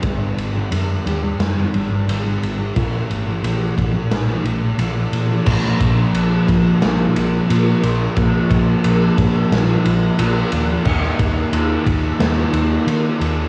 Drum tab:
CC |----------------|----------------|x---------------|----------------|
RD |x-x-x-x-x-x-x-x-|x-x-x-x-x-x-x-x-|--x-x-x-x-x-x-x-|x-x-x-x-x-x-x-x-|
SD |--------o-------|--------o-------|-o------o-------|--------o-------|
BD |o---------------|o-----o---------|o-o---o---------|o-o---o---------|

CC |x---------------|
RD |--x-x-x-x-x-x-x-|
SD |-o------o-------|
BD |o-o---o---------|